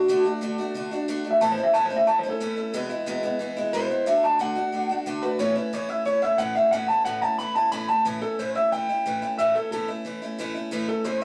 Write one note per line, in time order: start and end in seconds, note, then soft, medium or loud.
0.00 0.29 F#4 loud
0.08 0.25 D3 medium
0.08 0.25 A3 loud
0.08 0.25 D4 loud
0.08 0.23 F#4 loud
0.24 0.40 A3 medium
0.24 0.41 D4 medium
0.24 0.41 F#4 medium
0.41 0.58 D3 medium
0.41 0.58 A3 medium
0.41 0.58 D4 medium
0.41 0.57 F#4 medium
0.58 0.74 A3 medium
0.58 0.75 D4 medium
0.58 0.75 F#4 medium
0.74 0.91 D3 medium
0.74 0.92 A3 medium
0.74 0.91 D4 medium
0.74 0.90 F#4 medium
0.91 1.08 A3 medium
0.91 1.08 D4 medium
0.91 1.08 F#4 medium
1.08 1.25 D3 loud
1.08 1.25 A3 loud
1.08 1.24 D4 loud
1.08 1.23 F#4 loud
1.24 1.40 A3 soft
1.24 1.41 D4 medium
1.24 1.41 F#4 medium
1.31 1.41 E5 loud
1.41 1.58 A2 medium
1.41 1.58 E3 medium
1.41 1.58 A3 medium
1.41 1.58 C#4 medium
1.41 1.56 E4 loud
1.41 1.52 A5 loud
1.52 1.63 C5 loud
1.57 1.73 A3 soft
1.57 1.74 C#4 medium
1.57 1.74 E4 medium
1.63 1.74 E5 loud
1.74 1.91 A2 medium
1.74 1.91 E3 medium
1.74 1.91 A3 medium
1.74 1.90 C#4 medium
1.74 1.89 E4 medium
1.74 1.85 A5 loud
1.86 1.96 C5 medium
1.90 2.07 A3 soft
1.90 2.07 C#4 medium
1.90 2.07 E4 medium
1.96 2.07 E5 loud
2.07 2.24 E3 medium
2.07 2.25 A3 medium
2.07 2.24 C#4 medium
2.07 2.22 E4 medium
2.07 2.18 A5 loud
2.19 2.30 C5 loud
2.23 2.40 A3 medium
2.23 2.40 C#4 medium
2.23 2.40 E4 medium
2.30 2.73 A4 medium
2.40 2.57 A2 medium
2.40 2.57 E3 medium
2.40 2.58 A3 medium
2.40 2.57 C#4 medium
2.40 2.55 E4 loud
2.57 2.74 A3 soft
2.57 2.74 C#4 medium
2.57 2.74 E4 medium
2.73 2.90 E2 loud
2.73 2.91 B2 loud
2.73 2.91 E3 medium
2.73 2.90 G#3 loud
2.73 2.89 B3 medium
2.73 2.88 E4 loud
2.89 3.06 E3 soft
2.89 3.06 G#3 medium
2.89 3.06 B3 medium
2.89 3.07 E4 medium
3.06 3.23 E2 medium
3.06 3.24 B2 medium
3.06 3.24 E3 loud
3.06 3.23 G#3 medium
3.06 3.22 B3 medium
3.06 3.22 E4 medium
3.23 3.38 E3 medium
3.23 3.39 G#3 medium
3.23 3.40 B3 medium
3.23 3.40 E4 medium
3.39 3.56 E3 medium
3.39 3.57 G#3 medium
3.39 3.56 B3 medium
3.39 3.55 E4 medium
3.57 3.73 E3 medium
3.57 3.73 G#3 medium
3.57 3.73 B3 medium
3.57 3.73 E4 medium
3.73 3.90 E2 medium
3.73 3.90 B2 medium
3.73 3.90 E3 medium
3.73 3.90 G#3 loud
3.73 3.90 B3 medium
3.73 3.88 E4 loud
3.73 4.06 C5 loud
3.90 4.06 E3 soft
3.90 4.07 G#3 soft
3.90 4.07 B3 medium
3.90 4.07 E4 medium
4.06 4.23 D3 medium
4.06 4.24 A3 loud
4.06 4.23 D4 medium
4.06 4.21 F#4 loud
4.06 4.23 E5 medium
4.23 4.39 A3 soft
4.23 4.39 D4 soft
4.23 4.40 F#4 medium
4.23 4.40 A5 loud
4.39 4.56 D3 medium
4.39 4.57 A3 medium
4.39 4.56 D4 medium
4.39 4.54 F#4 medium
4.39 5.05 F#5 loud
4.55 4.72 A3 medium
4.55 4.73 D4 medium
4.55 4.73 F#4 medium
4.72 4.89 D3 medium
4.72 4.90 A3 medium
4.72 4.90 D4 medium
4.72 4.88 F#4 medium
4.89 5.06 A3 medium
4.89 5.06 D4 medium
4.89 5.06 F#4 medium
5.06 5.23 D3 medium
5.06 5.23 A3 loud
5.06 5.23 D4 loud
5.06 5.21 F#4 medium
5.22 5.39 A3 soft
5.22 5.40 D4 soft
5.22 5.39 F#4 medium
5.22 5.39 B4 loud
5.39 5.56 A2 medium
5.39 5.56 E3 loud
5.39 5.56 A3 medium
5.39 5.56 C#4 loud
5.39 5.54 E4 medium
5.39 5.56 C#5 loud
5.56 5.72 A3 soft
5.56 5.73 C#4 soft
5.56 5.73 E4 medium
5.56 5.74 B4 medium
5.73 5.89 A2 medium
5.73 5.90 E3 medium
5.73 5.90 A3 medium
5.73 5.89 C#4 medium
5.73 5.88 E4 medium
5.73 5.90 C#5 loud
5.89 6.05 A3 soft
5.89 6.06 C#4 medium
5.89 6.06 E4 medium
5.89 6.05 E5 loud
6.05 6.22 E3 medium
6.05 6.23 A3 medium
6.05 6.22 C#4 medium
6.05 6.21 E4 medium
6.05 6.22 C#5 loud
6.22 6.38 A3 medium
6.22 6.39 C#4 medium
6.22 6.39 E4 medium
6.22 6.39 E5 medium
6.38 6.55 A2 medium
6.38 6.56 E3 medium
6.38 6.56 A3 medium
6.38 6.55 C#4 loud
6.38 6.54 E4 medium
6.38 6.55 F#5 loud
6.55 6.72 A3 soft
6.55 6.72 C#4 medium
6.55 6.72 E4 medium
6.55 6.72 E5 loud
6.71 6.89 A2 medium
6.71 6.89 E3 loud
6.71 6.90 A3 medium
6.71 6.89 C#4 medium
6.71 6.88 E4 loud
6.71 6.88 F#5 loud
6.88 7.05 A3 medium
6.88 7.06 C#4 soft
6.88 7.06 E4 soft
6.88 7.05 A5 medium
7.05 7.22 A2 medium
7.05 7.23 E3 medium
7.05 7.23 A3 medium
7.05 7.22 C#4 medium
7.05 7.21 E4 medium
7.05 7.22 F#5 loud
7.22 7.39 A3 medium
7.22 7.39 C#4 medium
7.22 7.39 E4 medium
7.22 7.38 A5 loud
7.39 7.56 E3 medium
7.39 7.56 A3 medium
7.39 7.55 C#4 medium
7.39 7.54 E4 medium
7.39 7.55 B5 loud
7.55 7.71 A3 medium
7.55 7.72 C#4 medium
7.55 7.72 E4 medium
7.55 7.71 A5 loud
7.72 7.89 A2 medium
7.72 7.89 E3 medium
7.72 7.89 A3 medium
7.72 7.88 C#4 loud
7.72 7.87 E4 medium
7.72 7.88 B5 loud
7.88 8.05 A3 soft
7.88 8.05 C#4 medium
7.88 8.05 E4 medium
7.88 8.05 A5 loud
8.05 8.22 A2 medium
8.05 8.22 E3 medium
8.05 8.23 A3 medium
8.05 8.22 C#4 medium
8.05 8.20 E4 medium
8.21 8.38 A3 soft
8.21 8.39 C#4 soft
8.21 8.38 E4 medium
8.21 8.38 A4 medium
8.39 8.56 A2 medium
8.39 8.56 E3 medium
8.39 8.56 A3 medium
8.39 8.55 C#4 medium
8.39 8.54 E4 medium
8.39 8.55 C5 medium
8.55 8.72 A3 medium
8.55 8.73 C#4 soft
8.55 8.72 E4 medium
8.55 8.72 E5 medium
8.72 8.89 E3 medium
8.72 8.89 A3 medium
8.72 8.89 C#4 medium
8.72 8.88 E4 medium
8.72 9.37 G5 loud
8.89 9.05 A3 soft
8.89 9.06 C#4 medium
8.89 9.06 E4 medium
9.06 9.22 A2 medium
9.06 9.22 E3 medium
9.06 9.23 A3 medium
9.06 9.22 C#4 medium
9.06 9.21 E4 medium
9.22 9.38 A3 soft
9.22 9.39 C#4 medium
9.22 9.39 E4 medium
9.38 9.55 A2 medium
9.38 9.55 E3 medium
9.38 9.56 A3 medium
9.38 9.55 C#4 medium
9.38 9.54 E4 medium
9.38 9.55 E5 loud
9.55 9.72 A3 soft
9.55 9.72 C#4 medium
9.55 9.72 E4 medium
9.55 9.71 A4 medium
9.72 9.89 A2 medium
9.72 9.89 E3 medium
9.72 9.89 A3 medium
9.72 9.88 C#4 medium
9.72 9.87 E4 medium
9.72 9.88 A4 medium
9.88 10.05 A3 soft
9.88 10.05 C#4 soft
9.88 10.05 E4 medium
10.05 10.22 E3 medium
10.05 10.22 A3 medium
10.05 10.22 C#4 medium
10.05 10.21 E4 medium
10.22 10.38 A3 medium
10.22 10.39 C#4 medium
10.22 10.39 E4 medium
10.38 10.55 A2 medium
10.38 10.56 E3 medium
10.38 10.56 A3 loud
10.38 10.55 C#4 loud
10.38 10.53 E4 loud
10.55 10.71 A3 medium
10.55 10.71 C#4 medium
10.55 10.72 E4 medium
10.71 10.88 A2 loud
10.71 10.89 E3 loud
10.71 10.89 A3 loud
10.71 10.88 C#4 loud
10.71 10.87 E4 loud
10.88 11.04 A3 soft
10.88 11.05 C#4 medium
10.88 11.05 E4 soft
10.88 11.05 A4 medium
11.04 11.22 A2 medium
11.04 11.22 E3 medium
11.04 11.22 A3 medium
11.04 11.22 C#4 medium
11.04 11.20 E4 medium
11.04 11.21 C5 loud